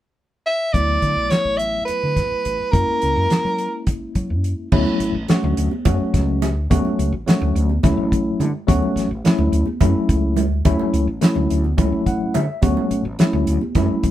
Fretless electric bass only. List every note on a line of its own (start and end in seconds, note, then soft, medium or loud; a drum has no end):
0.74 0.96 D2 medium
1.02 1.13 D3 medium
1.16 1.28 B1 medium
1.45 1.78 A1 medium
1.89 muted fretless electric bass stroke soft
2.03 2.18 D3 medium
2.17 2.28 A1 medium
2.32 muted fretless electric bass stroke soft
2.46 2.56 A1 medium
2.60 muted fretless electric bass stroke soft
2.73 2.84 F#2 medium
2.88 muted fretless electric bass stroke soft
3.03 3.14 C#2 medium
3.16 3.27 F#2 medium
3.31 muted fretless electric bass stroke soft
3.45 3.67 F#3 medium
4.16 4.32 F#3 medium
4.30 4.52 F#2 medium
4.73 4.84 D2 medium
5.00 5.11 A1 medium
5.15 5.26 A1 medium
5.30 muted fretless electric bass stroke soft
5.44 5.55 D2 medium
5.57 5.68 D2 medium
5.72 muted fretless electric bass stroke soft
5.86 5.97 F#2 medium
6.00 muted fretless electric bass stroke soft
6.14 6.56 C#2 medium
6.56 6.67 D2 medium
6.71 6.82 D2 medium
6.99 7.10 C#2 medium
7.12 7.24 A1 medium
7.28 muted fretless electric bass stroke soft
7.41 7.52 D2 medium
7.55 7.77 D2 medium
7.84 7.95 C#2 medium
7.97 8.30 A1 medium
8.40 8.51 D3 medium
8.69 8.80 D2 medium
8.96 9.07 A1 medium
9.11 9.22 A1 medium
9.25 muted fretless electric bass stroke soft
9.39 9.50 D2 medium
9.52 9.63 D2 medium
9.67 muted fretless electric bass stroke soft
9.81 9.92 F#2 medium
9.95 muted fretless electric bass stroke soft
10.09 10.51 C#2 medium
10.51 10.62 D2 medium
10.66 10.77 D2 medium
10.93 11.04 C#2 medium
11.07 11.19 A1 medium
11.22 muted fretless electric bass stroke soft
11.36 11.47 D2 medium
11.51 11.73 D2 medium
11.78 11.89 C#2 medium
11.92 12.25 A1 medium
12.35 12.46 D3 medium
12.63 12.74 D2 medium
12.91 13.02 A1 medium
13.05 13.16 A1 medium
13.19 muted fretless electric bass stroke soft
13.33 13.44 D2 medium
13.47 13.58 D2 medium
13.62 muted fretless electric bass stroke soft
13.75 13.86 F#2 medium
13.90 muted fretless electric bass stroke soft
14.04 14.11 C#2 medium